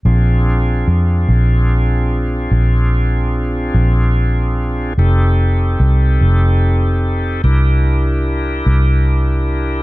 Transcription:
<<
  \new Staff \with { instrumentName = "Tonewheel organ" } { \time 12/8 \key bes \major \tempo 4. = 49 <c' d' f' aes'>1. | <c' ees' g' a'>2. <d' e' g' bes'>2. | }
  \new Staff \with { instrumentName = "Fingered electric bass" } { \clef bass \time 12/8 \key bes \major bes,,4 f,8 bes,,4. bes,,4. bes,,4. | f,,4 c,8 f,,4. c,4. c,4. | }
>>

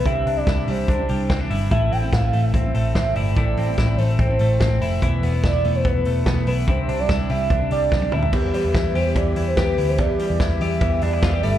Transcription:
<<
  \new Staff \with { instrumentName = "Soft synth lead" } { \time 4/4 \key e \phrygian \tempo 4 = 145 e''8. d''8. c''4. r4 | e''8 g''8 f''8. e''4~ e''16 e''8 d''8~ | d''4. c''8 c''4. r8 | r4 d''8. c''16 b'4. b'8 |
c''8. d''8. e''4 d''4 e''8~ | e''8 b'4 c''8 d''8. c''16 b'8. c''16 | d''4. e''8 e''8 d''4 e''8 | }
  \new Staff \with { instrumentName = "Vibraphone" } { \time 4/4 \key e \phrygian r1 | r1 | r1 | r1 |
r1 | g'1~ | g'2.~ g'8 a'8 | }
  \new Staff \with { instrumentName = "Clean electric guitar" } { \time 4/4 \key e \phrygian <c e'>8 d'8 e'8 g8 d'8 g8 c'16 d'16 e'8 | <a, e'>8 c'4 a8 c'8 a8 c'8 e'8 | <a, e'>8 c'8 e'8 a8 c'8 a8 c'8 e'8 | <e, e'>8 b8 e'8 a8 b8 a8 b8 e'8 |
<c e'>8 d'8 e'8 g8 d'8 g8 d'8 e'8 | e,8 g8 e'8 g'8 e8 e'8 g'8 e'8 | e,8 g8 e'8 g'8 e8 d'16 e'16 f'16 g'16 g8 | }
  \new Staff \with { instrumentName = "Steel-string acoustic guitar" } { \time 4/4 \key e \phrygian <c e g d' e'>8. <g d' e'>8. <e g d' e'>8. <g d' e'>8. <e g d' e'>8 <e g d' e'>8 | <a, e a c' e'>8. <a c' e'>8. <e a c' e'>8. <a c' e'>8. <e a c' e'>8 <e a c' e'>8 | <a, e a c' e'>8. <a c' e'>8. <e a c' e'>8. <a c' e'>8. <e a c' e'>8 <e a c' e'>8 | <e a b e'>8. <a b e'>8. <e a b e'>8. <a b e'>8. <e a b e'>8 <e a b e'>8 |
<c e g d' e'>8. <g d' e'>8. <e g d' e'>8. <g d' e'>8. <e g d' e'>8 <e g d' e'>8 | <e b e' g'>8 <e b e' g'>4 <e b e' g'>4 <e b e' g'>8 <e b e' g'>8 <e b e' g'>8 | <e b e' g'>8 <e b e' g'>4 <e b e' g'>4 <e b e' g'>8 <e b e' g'>8 <a d' g' b'>8 | }
  \new Staff \with { instrumentName = "Picked electric bass" } { \clef bass \time 4/4 \key e \phrygian c,8 c,8 c,8 c,8 c,8 c,8 c,8 g,,8 | a,,8 a,,8 a,,8 a,,8 a,,8 a,,8 a,,8 g,,8 | a,,8 a,,8 a,,8 a,,8 a,,8 a,,8 a,,8 f,,8 | e,,8 e,,8 e,,8 e,,8 e,,8 e,,8 e,,8 b,,8 |
c,8 c,8 c,8 c,8 c,8 c,8 c,8 d,8 | e,8 r16 e,16 e,8 e,8 e,8 e,8 e,8 d,8 | e,8 r16 e,16 e,8 e,8 e,8 e,8 e,8 g,,8 | }
  \new DrumStaff \with { instrumentName = "Drums" } \drummode { \time 4/4 <hh bd>8 hho8 <hh bd sn>8 hho8 <hh bd>8 hho8 <hh bd sn>8 hho8 | <hh bd>8 hho8 <hh bd sn>8 hho8 <hh bd>8 hho8 <hh bd sn>8 hho8 | <hh bd>8 hho8 <hh bd sn>8 hho8 <hh bd>8 hho8 <hh bd sn>8 hho8 | <hh bd>8 hho8 <hh bd sn>8 hho8 <hh bd>8 hho8 <hh bd sn>8 hho8 |
<hh bd>8 hho8 <hh bd sn>8 hho8 <hh bd>8 hho8 <bd sn>16 tommh16 toml16 tomfh16 | <cymc bd>8 hho8 <hhp bd cymr sn>8 hho8 <hhp bd cymr>8 hho8 <hhp bd cymr sn>8 hho8 | <hhp bd cymr>8 hho8 <hhp bd cymr sn>8 hho8 <hhp bd cymr>8 hho8 <hhp bd cymr sn>8 hho8 | }
>>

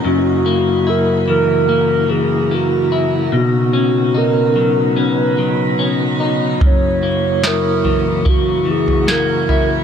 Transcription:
<<
  \new Staff \with { instrumentName = "Glockenspiel" } { \time 4/4 \key fis \mixolydian \tempo 4 = 73 r1 | r1 | r4 dis'''2 gis'''4 | }
  \new Staff \with { instrumentName = "Soft synth lead" } { \time 4/4 \key fis \mixolydian fis'4 ais'8 ais'4 gis'8 fis'8. r16 | fis'4 ais'4 b'4. r8 | cis''4 ais'4 fis'8 gis'8 ais'8. r16 | }
  \new Staff \with { instrumentName = "Tonewheel organ" } { \time 4/4 \key fis \mixolydian << { fis'1~ | fis'1~ | fis'1 | } \\ { <ais e'>1 | <b dis'>1 | <ais e'>1 | } >> }
  \new Staff \with { instrumentName = "Tonewheel organ" } { \clef bass \time 4/4 \key fis \mixolydian cis1~ | cis1 | cis1 | }
  \new Staff \with { instrumentName = "Clean electric guitar" } { \time 4/4 \key fis \mixolydian fis,8 ais8 e'8 e8 ais8 e8 ais8 e'8 | b,8 cis'8 dis'8 fis8 cis'8 fis8 cis'8 dis'8 | fis,8 ais8 e'8 e8 ais8 e8 ais8 e'8 | }
  \new DrumStaff \with { instrumentName = "Drums" } \drummode { \time 4/4 r4 r4 r4 r4 | r4 r4 r4 r4 | <bd tomfh>4 sn8 tomfh8 <bd tomfh>8. tomfh16 sn8 tomfh8 | }
>>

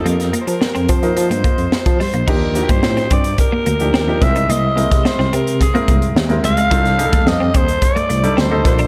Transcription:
<<
  \new Staff \with { instrumentName = "Alto saxophone" } { \time 4/4 \key f \mixolydian \tempo 4 = 108 bes'8~ bes'32 c''32 bes'8. c''4. c''8 c''8 | bes'8. c''8. d''8 bes'4. e''8 | dis''4 c''8 bes'8 gis'4 r8 f''8~ | f''4 ees''8 c''8 d''4 c''8 c''8 | }
  \new Staff \with { instrumentName = "Grand piano" } { \time 4/4 \key f \mixolydian <f bes ees' g'>4 r8. <f bes ees' bes'>4. r8. | <f d' ees' g'>16 r16 <f d' ees' fis' g'>4. r8. <f d' ees' g'>16 r16 <f d' ees' g'>16 <gis c' e' bes'>8~ | <gis c' e' bes'>16 r16 <gis c' e' bes'>4~ <gis c' e' bes'>16 r8 <gis c' e' bes'>8. r16 <gis c' e' bes'>8 r16 | <g d' ees' a'>16 r16 <g d' ees' aes' a'>4. r8. <g d' ees' a'>16 r16 <g d' ees' a'>16 <f bes d' a'>8 | }
  \new Staff \with { instrumentName = "Clean electric guitar" } { \time 4/4 \key f \mixolydian bes16 r16 bes16 r8 c'16 c'16 r8 bes16 bes16 r8. g16 bes16 | ees'16 r8 bes16 r16 c'16 c'16 r8 bes16 bes16 r16 c'16 r8 dis'16 | bes16 r16 bes16 r8 c'16 c'16 r8 bes16 bes16 r8. g16 gis16 | f'16 r8 a16 r16 c'16 c'16 r8 a16 a16 r16 c'16 r8 d'16 | }
  \new Staff \with { instrumentName = "Tine electric piano" } { \clef bass \time 4/4 \key f \mixolydian f,8 r16 f16 r16 f,16 f8 f16 g,16 r16 f,16 r16 f16 r16 bes,,16 | ees,8. g,16 a,8 g,8 r8 d,8 ees,8 c,8 | c,8. c16 r16 c,16 c8. r16 c,8 dis,8 des,8 | c,8. ees,16 f,8 ees,8 r8 c,8 d,8 bes,,8 | }
  \new DrumStaff \with { instrumentName = "Drums" } \drummode { \time 4/4 hh16 <hh sn>16 hh16 hh16 sn16 hh16 <hh bd>16 hh16 hh16 hh16 <hh bd>16 hh16 sn16 <hh bd>16 <hho sn>16 hh16 | <cymc bd>8 hh16 <hh bd>16 sn16 <hh sn>16 <hh bd>16 hh16 <hh bd>8 hh16 hh16 sn8 <hh bd sn>16 hh16 | hh8 hh16 <hh bd sn>16 sn16 sn16 hh16 hh16 <hh bd>16 hh16 <hh bd>16 hh16 sn16 hh16 <hh sn>16 hh16 | <hh bd>16 <hh sn>16 hh16 <hh bd sn>16 sn8 <hh bd>16 hh16 <hh bd>16 hh16 hh16 hh16 sn8 <hh bd sn>16 hh16 | }
>>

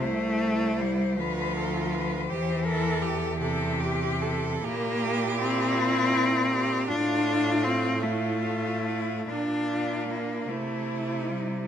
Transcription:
<<
  \new Staff \with { instrumentName = "Cello" } { \time 6/8 \key c \mixolydian \tempo 4. = 52 c''4. b'8 a'8 b'8 | c''8 bes'8 a'8 g'4. | e'2. | f'4. f'4. |
f'4. e'4. | }
  \new Staff \with { instrumentName = "Cello" } { \time 6/8 \key c \mixolydian e'4. f'4. | g'8 a'8 g'8 a'8 g'8 a'8 | g'4. f'8 e'8 g'8 | f'4. e'8 f'8 e'8 |
d'4. e'4. | }
  \new Staff \with { instrumentName = "Cello" } { \time 6/8 \key c \mixolydian a4 g8 f4. | e4. c4. | bes4 c'2 | d'4 c'8 a4. |
d'4 bes8 a4 g8 | }
  \new Staff \with { instrumentName = "Cello" } { \clef bass \time 6/8 \key c \mixolydian c,4. d,4. | e,2. | bes,2. | a,2. |
bes,4. c4. | }
>>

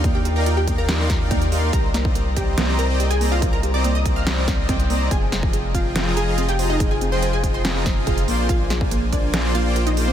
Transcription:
<<
  \new Staff \with { instrumentName = "Synth pluck" } { \time 4/4 \key c \minor \tempo 4 = 142 <d' d''>16 <g' g''>8 <bes' bes''>8 <g' g''>8 <bes' bes''>2 r16 | <bes' bes''>8. r8. <g' g''>4 <bes' bes''>8. <aes' aes''>8 <f' f''>16~ | <f' f''>16 <bes' bes''>8 <d'' d'''>8 <ees'' ees'''>8 <f'' f'''>2 r16 | <aes' aes''>8. r8. <f' f''>4 <aes' aes''>8. <g' g''>8 <ees' ees''>16~ |
<ees' ees''>16 <aes' aes''>8 <c'' c'''>8 <aes' aes''>8 <c'' c'''>2 r16 | <f' f''>8. r8. <d' d''>4 <f' f''>8. <ees' ees''>8 <c' c''>16 | }
  \new Staff \with { instrumentName = "Supersaw synth" } { \time 4/4 \key c \minor <ees' bes' d'' f'' g''>16 r8 <ees' bes' d'' f'' g''>16 r8 <ees' bes' d'' f'' g''>8. <ees' bes' d'' f'' c'''>8 <ees' bes' d'' f'' g''>16 r8 <ees' bes' d'' f'' c'''>8 | <c' c'' d'' ees''>16 r8 <c' c'' d'' ees'' bes''>16 r8 <c' c'' d'' ees'' bes''>8. <c' c'' d'' ees'' bes''>8 <c' c'' d'' ees'' g''>16 r8 <c' c'' d'' ees'' bes''>8 | <c' c'' d'' ees''>16 r8 <c' c'' d'' ees'' bes''>16 r8 <c' c'' d'' ees'' bes''>8. <c' c'' d'' ees'' bes''>8 <c' c'' d'' ees'' g''>16 r8 <c' c'' d'' ees'' bes''>8 | <f f' aes' g''>16 r8 <f f' aes' ees'' g''>16 r8 <f f' aes' ees'' g''>8. <f f' aes' ees'' bes''>8 <f f' aes' ees'' f''>16 r8 <f f' aes' ees'' bes''>8 |
<f f' aes' ees'' g''>16 r8 <f f' aes' ees'' g''>16 r8 <f f' aes' ees'' g''>8. <f f' aes' ees'' bes''>8 <f f' aes' ees'' f''>16 r8 <bes f' c'' d'' c'''>8 | <bes f' c'' d'' aes''>16 r8 <bes f' c'' d'' aes''>16 r8 <bes f' c'' d'' aes''>8. <bes f' c'' d'' c'''>8 <bes f' c'' d'' g''>16 r8 <bes f' c'' d'' c'''>8 | }
  \new Staff \with { instrumentName = "Synth arpeggio sound" } { \time 4/4 \key c \minor bes8 g'8 f'8 bes8 g'8 f'8 bes8 g'8 | g'8 bes8 bes'8 g'8 bes8 bes'8 g'8 bes8 | bes'8 g'8 bes8 bes'8 g'8 c'8 c'8 bes8 | c'8 c''8 aes'8 c'8 c''8 aes'8 c'8 c''8 |
aes'8 c'8 c''8 aes'8 c'8 c''8 aes'8 bes8 | bes'8 aes'8 bes8 bes'8 aes'8 bes8 bes'8 aes'8 | }
  \new Staff \with { instrumentName = "Sub bass" } { \clef bass \time 4/4 \key c \minor ees,1 | c,1~ | c,1 | f,,1~ |
f,,2.~ f,,8 bes,,8~ | bes,,1 | }
  \new DrumStaff \with { instrumentName = "Drums" } \drummode { \time 4/4 <hh bd>8 hh8 hh8 <hh bd>8 <hh sn>8 <hh bd sn>8 <hh bd>16 hh16 hho8 | <hh bd>8 <hh sn>16 bd16 hh8 <hh bd>8 <hh sn>8 hh8 hh16 hh16 hho8 | <hh bd>8 hh8 hh8 <hh bd>8 <hh sn>8 <hh bd sn>8 <hh bd>16 hh16 hho8 | <hh bd>8 <hh sn>16 bd16 hh8 <hh bd>8 <hh sn>8 hh8 hh16 hh16 hho8 |
<hh bd>8 hh8 hh8 <hh bd>8 <hh sn>8 <hh bd sn>8 <hh bd>16 hh16 hho8 | <hh bd>8 <hh sn>16 bd16 hh8 <hh bd>8 <hh sn>8 hh8 hh16 hh16 hho8 | }
>>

